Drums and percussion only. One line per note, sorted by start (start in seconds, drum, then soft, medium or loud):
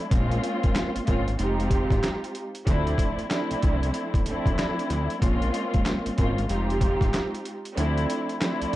0.11 kick loud
0.11 closed hi-hat loud
0.31 closed hi-hat soft
0.44 closed hi-hat medium
0.63 kick loud
0.63 closed hi-hat soft
0.75 snare loud
0.75 clap medium
0.75 closed hi-hat medium
0.96 closed hi-hat medium
1.07 kick medium
1.07 closed hi-hat medium
1.28 closed hi-hat medium
1.39 closed hi-hat medium
1.60 closed hi-hat soft
1.71 kick medium
1.71 closed hi-hat medium
1.91 kick loud
1.91 snare soft
1.91 closed hi-hat soft
2.03 snare loud
2.03 clap medium
2.03 closed hi-hat medium
2.24 closed hi-hat medium
2.35 closed hi-hat medium
2.55 closed hi-hat medium
2.67 kick loud
2.67 closed hi-hat loud
2.87 closed hi-hat soft
2.98 kick medium
2.98 closed hi-hat medium
3.19 closed hi-hat soft
3.31 snare loud
3.31 clap medium
3.31 closed hi-hat medium
3.51 closed hi-hat medium
3.62 kick medium
3.62 closed hi-hat medium
3.83 closed hi-hat medium
3.94 closed hi-hat medium
4.14 kick medium
4.14 closed hi-hat soft
4.26 closed hi-hat medium
4.46 kick loud
4.46 closed hi-hat soft
4.59 snare loud
4.59 clap medium
4.59 closed hi-hat medium
4.79 closed hi-hat medium
4.90 closed hi-hat medium
5.10 closed hi-hat medium
5.22 kick loud
5.22 closed hi-hat loud
5.42 closed hi-hat soft
5.54 closed hi-hat medium
5.74 kick loud
5.74 closed hi-hat soft
5.86 snare loud
5.86 clap medium
5.86 closed hi-hat medium
6.06 closed hi-hat medium
6.18 kick medium
6.18 closed hi-hat medium
6.38 closed hi-hat medium
6.49 closed hi-hat medium
6.70 closed hi-hat soft
6.81 kick loud
6.81 closed hi-hat medium
7.01 kick medium
7.01 snare soft
7.01 closed hi-hat soft
7.14 snare loud
7.14 clap medium
7.14 closed hi-hat medium
7.35 closed hi-hat medium
7.45 closed hi-hat medium
7.65 closed hi-hat medium
7.77 closed hi-hat loud
7.97 closed hi-hat soft
8.10 closed hi-hat medium
8.29 closed hi-hat soft
8.41 snare loud
8.41 clap medium
8.41 closed hi-hat medium
8.62 closed hi-hat medium